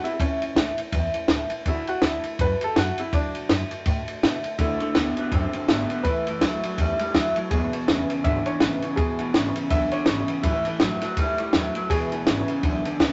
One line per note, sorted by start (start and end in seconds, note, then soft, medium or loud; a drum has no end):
0.04 0.20 C#4 soft
0.04 0.12 E4 medium
0.04 0.20 E4 medium
0.04 muted upright bass stroke medium
0.04 ride medium
0.14 0.20 E4 medium
0.19 0.36 C#2 loud
0.19 0.41 A2 medium
0.19 0.41 E3 medium
0.19 0.42 A3 medium
0.19 0.54 C#4 medium
0.19 0.42 C#4 medium
0.19 0.40 E4 medium
0.19 kick loud
0.19 ride medium
0.41 0.53 F#1 medium
0.41 0.57 C#4 medium
0.41 0.57 E4 medium
0.41 ride medium
0.45 0.56 A3 medium
0.55 0.72 C#2 medium
0.55 0.78 A2 medium
0.55 0.78 E3 medium
0.55 0.79 A3 medium
0.55 0.78 C#4 medium
0.55 0.76 E4 medium
0.55 snare loud
0.55 ride medium
0.77 0.92 A3 medium
0.77 0.93 C#4 medium
0.77 0.93 E4 medium
0.77 muted upright bass stroke medium
0.77 ride medium
0.92 1.09 E2 medium
0.92 1.14 E3 medium
0.92 1.15 A3 medium
0.92 1.14 C#4 medium
0.92 1.12 E4 medium
0.92 kick loud
0.92 ride medium
1.14 1.29 A3 medium
1.14 1.29 C#4 medium
1.14 1.29 E4 medium
1.14 ride medium
1.28 1.45 C#2 medium
1.28 1.51 A2 medium
1.28 1.51 E3 medium
1.28 1.52 A3 loud
1.28 1.51 C#4 loud
1.28 1.49 E4 loud
1.28 kick medium
1.28 snare loud
1.28 ride medium
1.50 1.67 C#4 soft
1.50 1.66 E4 medium
1.50 muted upright bass stroke medium
1.50 ride medium
1.54 1.66 A3 soft
1.65 1.82 D2 medium
1.65 1.88 D3 medium
1.65 1.88 A3 medium
1.65 1.88 D4 medium
1.65 1.87 E4 medium
1.65 1.86 F#4 medium
1.65 kick loud
1.65 ride medium
1.87 2.02 A3 soft
1.87 2.03 D4 medium
1.87 2.03 F#4 medium
1.87 2.04 F#4 medium
1.87 muted upright bass stroke medium
1.87 ride medium
2.02 2.18 D2 medium
2.02 2.24 D3 medium
2.02 2.25 A3 medium
2.02 2.24 D4 medium
2.02 2.41 E4 medium
2.02 2.23 F#4 medium
2.02 snare loud
2.02 ride medium
2.23 2.39 A3 soft
2.23 2.40 D4 soft
2.23 2.39 F#4 soft
2.23 muted upright bass stroke medium
2.23 ride medium
2.38 2.56 F#2 medium
2.38 2.60 D3 medium
2.38 2.61 A3 medium
2.38 2.60 D4 medium
2.38 2.62 B4 loud
2.38 kick loud
2.38 ride medium
2.42 2.59 F#4 medium
2.60 2.75 A3 soft
2.60 2.76 D4 medium
2.60 2.76 F#4 medium
2.60 ride medium
2.64 2.78 A4 loud
2.75 2.92 F#2 medium
2.75 2.97 D3 medium
2.75 2.98 A3 medium
2.75 2.98 D4 medium
2.75 2.96 F#4 medium
2.75 2.98 F#4 loud
2.75 snare loud
2.75 ride medium
2.97 3.13 A3 soft
2.97 3.13 D4 soft
2.97 3.14 E4 medium
2.97 3.13 F#4 soft
2.97 ride medium
3.13 3.29 F#2 loud
3.13 3.34 D3 medium
3.13 3.35 A3 medium
3.13 3.47 D4 medium
3.13 3.35 D4 medium
3.13 3.34 F#4 medium
3.13 kick loud
3.13 ride medium
3.33 3.45 B1 medium
3.33 3.50 D4 soft
3.33 3.50 F#4 medium
3.33 ride medium
3.38 3.49 A3 soft
3.49 3.65 F#2 medium
3.49 3.71 D3 medium
3.49 3.71 A3 medium
3.49 3.72 D4 medium
3.49 3.70 F#4 medium
3.49 snare loud
3.49 ride medium
3.71 3.86 A3 medium
3.71 3.87 D4 medium
3.71 3.86 F#4 medium
3.71 muted upright bass stroke medium
3.71 ride medium
3.85 4.02 A2 medium
3.85 4.07 D3 medium
3.85 4.08 A3 medium
3.85 4.08 D4 medium
3.85 4.06 F#4 medium
3.85 kick loud
3.85 ride medium
4.07 4.22 A3 medium
4.07 4.23 D4 medium
4.07 4.23 F#4 medium
4.07 muted upright bass stroke medium
4.07 ride medium
4.23 4.39 B2 medium
4.23 4.44 D3 loud
4.23 4.45 A3 loud
4.23 4.44 D4 loud
4.23 4.42 F#4 loud
4.23 snare loud
4.23 ride medium
4.44 4.58 A3 soft
4.44 4.59 D4 medium
4.44 4.59 F#4 medium
4.44 muted upright bass stroke medium
4.44 ride medium
4.58 4.75 D2 medium
4.58 4.80 D3 medium
4.58 4.78 D3 medium
4.58 4.81 A3 medium
4.58 4.79 A3 medium
4.58 4.81 D4 medium
4.58 6.01 E4 medium
4.58 4.79 F#4 medium
4.58 kick loud
4.58 ride medium
4.80 4.94 D3 medium
4.80 4.94 A3 medium
4.80 4.95 A3 soft
4.80 4.95 D4 soft
4.80 4.96 F#4 medium
4.80 ride medium
4.95 5.12 D2 medium
4.95 5.17 D3 medium
4.95 5.15 D3 medium
4.95 5.18 A3 medium
4.95 5.15 B3 loud
4.95 5.18 D4 medium
4.95 5.15 F#4 medium
4.95 snare loud
4.95 ride medium
5.16 5.31 D3 medium
5.16 5.31 A3 medium
5.16 5.31 B3 loud
5.16 5.32 D4 medium
5.16 5.32 F#4 medium
5.16 ride medium
5.31 5.48 F#2 medium
5.31 5.53 D3 medium
5.31 5.52 D3 medium
5.31 5.54 A3 medium
5.31 5.52 C4 loud
5.31 5.53 D4 medium
5.31 5.52 F#4 medium
5.31 kick loud
5.31 ride medium
5.53 5.68 D3 medium
5.53 5.67 A3 soft
5.53 5.68 C4 medium
5.53 5.68 D4 medium
5.53 5.68 F#4 medium
5.53 muted upright bass stroke medium
5.53 ride medium
5.68 5.85 G#1 loud
5.68 5.90 D3 medium
5.68 5.88 D3 loud
5.68 5.90 A3 loud
5.68 5.88 B3 loud
5.68 5.90 D4 loud
5.68 5.88 F#4 loud
5.68 snare loud
5.68 ride medium
5.90 6.04 D3 medium
5.90 6.05 A3 soft
5.90 6.04 B3 medium
5.90 6.06 D4 medium
5.90 6.05 F#4 medium
5.90 ride medium
6.03 6.21 A1 loud
6.03 6.27 A2 medium
6.03 6.25 A2 medium
6.03 6.27 E3 medium
6.03 6.26 E3 medium
6.03 6.27 A3 medium
6.03 6.26 C#4 medium
6.03 6.25 E4 medium
6.03 6.38 B4 loud
6.03 kick loud
6.03 ride medium
6.26 6.38 F#1 medium
6.26 6.41 A2 medium
6.26 6.41 E3 medium
6.26 6.41 A3 soft
6.26 6.42 C#4 soft
6.26 6.42 E4 medium
6.26 ride medium
6.41 6.57 C#2 medium
6.41 6.63 A2 medium
6.41 6.62 A2 medium
6.41 6.63 E3 medium
6.41 6.62 F#3 medium
6.41 6.64 A3 medium
6.41 6.63 C#4 medium
6.41 6.61 E4 medium
6.41 snare loud
6.41 ride medium
6.62 6.77 A2 medium
6.62 6.77 F#3 medium
6.62 6.77 A3 medium
6.62 6.78 C#4 medium
6.62 6.78 E4 medium
6.62 muted upright bass stroke medium
6.62 ride medium
6.77 6.94 E2 medium
6.77 6.98 A2 medium
6.77 6.99 E3 medium
6.77 6.98 G3 medium
6.77 7.00 A3 medium
6.77 6.99 C#4 medium
6.77 6.97 E4 medium
6.77 kick loud
6.77 ride medium
6.98 7.13 A2 medium
6.98 7.13 G3 medium
6.98 7.14 C#4 medium
6.98 7.14 E4 medium
6.98 muted upright bass stroke medium
6.98 ride medium
7.13 7.31 D2 medium
7.13 7.36 A2 loud
7.13 7.34 A2 medium
7.13 7.36 E3 medium
7.13 7.34 F#3 loud
7.13 7.36 A3 medium
7.13 7.35 C#4 loud
7.13 7.34 E4 medium
7.13 kick medium
7.13 snare loud
7.13 ride medium
7.35 7.50 A2 medium
7.35 7.50 F#3 medium
7.35 7.51 A3 soft
7.35 7.52 C#4 medium
7.35 7.51 E4 medium
7.35 ride medium
7.50 7.67 E1 loud
7.50 7.72 E2 medium
7.50 7.71 E2 medium
7.50 7.73 B2 medium
7.50 7.71 B2 medium
7.50 7.73 E3 medium
7.50 7.73 G#3 medium
7.50 7.72 B3 medium
7.50 7.71 E4 medium
7.50 8.27 G#4 medium
7.50 kick loud
7.50 ride medium
7.72 7.87 E2 medium
7.72 7.87 B2 medium
7.72 7.88 E3 soft
7.72 7.88 G#3 medium
7.72 7.88 B3 medium
7.72 7.88 E4 medium
7.72 muted upright bass stroke medium
7.72 ride medium
7.88 8.04 E1 medium
7.88 8.08 E2 medium
7.88 8.10 E2 medium
7.88 8.10 B2 medium
7.88 8.08 C#3 loud
7.88 8.10 E3 medium
7.88 8.10 G#3 medium
7.88 8.09 B3 medium
7.88 8.08 E4 medium
7.88 snare loud
7.88 ride medium
8.09 8.23 E2 medium
8.09 8.23 C#3 medium
8.09 8.22 E3 medium
8.09 8.24 G#3 soft
8.09 8.25 B3 medium
8.09 8.25 E4 medium
8.09 muted upright bass stroke medium
8.09 ride medium
8.23 8.41 G#1 medium
8.23 8.44 E2 medium
8.23 8.44 D3 medium
8.23 8.46 E3 medium
8.23 8.46 G#3 medium
8.23 8.46 B3 medium
8.23 8.44 E4 medium
8.23 8.47 E5 loud
8.23 kick loud
8.23 ride medium
8.45 8.59 E2 medium
8.45 8.60 D3 medium
8.45 8.61 E3 soft
8.45 8.62 G#3 soft
8.45 8.62 B3 soft
8.45 8.61 E4 medium
8.45 8.60 C#5 medium
8.45 ride medium
8.60 8.77 A1 medium
8.60 8.80 E2 loud
8.60 8.83 E2 medium
8.60 8.83 B2 medium
8.60 8.80 C#3 loud
8.60 8.83 E3 medium
8.60 8.84 G#3 medium
8.60 8.83 B3 medium
8.60 8.82 E4 medium
8.60 snare loud
8.60 ride medium
8.81 8.96 E2 medium
8.81 8.97 C#3 medium
8.81 8.98 G#3 soft
8.81 8.98 B3 medium
8.81 8.98 E4 medium
8.81 muted upright bass stroke medium
8.81 ride medium
8.86 8.97 E3 soft
8.96 9.14 G#1 loud
8.96 9.19 E2 medium
8.96 9.17 E2 medium
8.96 9.19 B2 medium
8.96 9.17 B2 medium
8.96 9.20 E3 medium
8.96 9.20 G#3 medium
8.96 9.19 B3 medium
8.96 9.18 E4 medium
8.96 9.72 G#4 medium
8.96 kick loud
8.96 ride medium
9.18 9.30 D2 medium
9.18 9.33 E2 medium
9.18 9.33 B2 medium
9.18 9.34 G#3 medium
9.18 9.34 B3 medium
9.18 9.34 E4 medium
9.18 ride medium
9.23 9.34 E3 soft
9.33 9.50 G#1 loud
9.33 9.55 E2 medium
9.33 9.54 E2 medium
9.33 9.56 B2 medium
9.33 9.54 C#3 loud
9.33 9.56 E3 medium
9.33 9.56 G#3 medium
9.33 9.55 B3 medium
9.33 9.54 E4 medium
9.33 snare loud
9.33 ride medium
9.55 9.70 E2 medium
9.55 9.70 C#3 medium
9.55 9.70 E3 medium
9.55 9.70 G#3 medium
9.55 9.71 B3 medium
9.55 9.71 E4 medium
9.55 ride medium
9.70 9.87 B1 medium
9.70 9.91 E2 medium
9.70 9.91 D3 medium
9.70 9.92 E3 medium
9.70 9.93 G#3 medium
9.70 9.92 B3 medium
9.70 9.91 E4 medium
9.70 9.93 E5 loud
9.70 kick loud
9.70 ride medium
9.91 10.06 E2 medium
9.91 10.07 D3 medium
9.91 10.07 E3 soft
9.91 10.07 G#3 soft
9.91 10.08 B3 medium
9.91 10.07 E4 medium
9.91 10.06 C#5 medium
9.91 muted upright bass stroke medium
9.91 ride medium
10.06 10.24 G#1 medium
10.06 10.29 E2 medium
10.06 10.27 E2 medium
10.06 10.29 B2 medium
10.06 10.27 C#3 loud
10.06 10.30 E3 medium
10.06 10.30 G#3 medium
10.06 10.29 B3 medium
10.06 10.28 E4 medium
10.06 snare loud
10.06 ride medium
10.28 10.42 E2 medium
10.28 10.43 C#3 medium
10.28 10.45 G#3 medium
10.28 10.45 B3 medium
10.28 10.44 E4 medium
10.28 ride medium
10.32 10.44 E3 soft
10.43 10.60 A1 loud
10.43 10.66 A2 medium
10.43 10.64 A2 medium
10.43 10.64 E3 loud
10.43 10.66 E3 medium
10.43 10.67 A3 medium
10.43 10.66 C#4 medium
10.43 11.94 E4 medium
10.43 kick loud
10.43 ride medium
10.47 10.64 E4 medium
10.65 10.80 A2 medium
10.65 10.80 E3 medium
10.65 10.81 C#4 medium
10.65 10.81 E4 medium
10.65 muted upright bass stroke medium
10.65 ride medium
10.69 10.81 A3 soft
10.80 10.97 A1 loud
10.80 11.02 A2 medium
10.80 11.01 A2 medium
10.80 11.03 E3 medium
10.80 11.01 F#3 loud
10.80 11.03 A3 medium
10.80 11.02 C#4 loud
10.80 11.00 E4 medium
10.80 snare loud
10.80 ride medium
11.01 11.16 A2 medium
11.01 11.16 F#3 medium
11.01 11.18 C#4 medium
11.01 11.17 E4 medium
11.01 muted upright bass stroke medium
11.01 snare soft
11.01 ride medium
11.05 11.18 A3 soft
11.17 11.33 C#2 medium
11.17 11.37 A2 medium
11.17 11.39 E3 medium
11.17 11.37 G3 medium
11.17 11.40 A3 medium
11.17 11.39 C#4 medium
11.17 11.37 E4 medium
11.17 kick loud
11.17 ride medium
11.38 11.53 A2 medium
11.38 11.53 G3 medium
11.38 11.54 C#4 medium
11.38 11.54 E4 medium
11.38 muted upright bass stroke medium
11.38 ride medium
11.42 11.53 A3 medium
11.53 11.70 D#2 loud
11.53 11.75 A2 loud
11.53 11.74 A2 loud
11.53 11.76 E3 medium
11.53 11.74 F#3 loud
11.53 11.76 A3 loud
11.53 11.76 C#4 loud
11.53 11.74 E4 medium
11.53 snare loud
11.53 ride medium
11.75 11.89 A2 medium
11.75 11.90 F#3 medium
11.75 11.91 A3 medium
11.75 11.91 C#4 medium
11.75 11.90 E4 medium
11.75 ride medium
11.89 12.06 E1 loud
11.89 12.12 E2 medium
11.89 12.10 E2 medium
11.89 12.12 B2 medium
11.89 12.10 B2 medium
11.89 12.12 E3 medium
11.89 12.12 G#3 medium
11.89 12.11 B3 medium
11.89 12.10 E4 medium
11.89 12.96 G#4 loud
11.89 kick loud
11.89 ride medium
12.11 12.23 D2 medium
12.11 12.26 E2 medium
12.11 12.26 B2 medium
12.11 12.26 E3 soft
12.11 12.26 G#3 medium
12.11 12.27 B3 medium
12.11 12.27 E4 medium
12.11 ride medium
12.26 12.43 G#1 loud
12.26 12.48 E2 medium
12.26 12.47 E2 medium
12.26 12.48 B2 medium
12.26 12.47 C#3 medium
12.26 12.49 E3 medium
12.26 12.49 G#3 medium
12.26 12.49 B3 medium
12.26 12.47 E4 loud
12.26 snare loud
12.26 ride medium
12.48 12.62 E2 medium
12.48 12.63 C#3 medium
12.48 12.61 E3 medium
12.48 12.62 G#3 medium
12.48 12.63 B3 medium
12.48 12.64 E4 medium
12.48 ride medium
12.62 12.80 B1 medium
12.62 12.83 E2 medium
12.62 12.83 D3 medium
12.62 12.84 E3 medium
12.62 12.85 G#3 medium
12.62 12.85 B3 medium
12.62 12.83 E4 medium
12.62 kick loud
12.62 ride medium
12.84 12.99 E2 medium
12.84 12.99 D3 medium
12.84 13.01 G#3 medium
12.84 13.01 B3 medium
12.84 13.00 E4 medium
12.84 muted upright bass stroke medium
12.84 ride medium
12.88 13.00 E3 soft
13.00 13.13 D2 medium
13.00 13.13 E2 loud
13.00 13.13 E2 medium
13.00 13.13 B2 loud
13.00 13.13 C#3 loud
13.00 13.13 E3 loud
13.00 13.13 G#3 loud
13.00 13.13 B3 loud
13.00 13.13 E4 loud
13.00 kick medium
13.00 snare loud
13.00 ride medium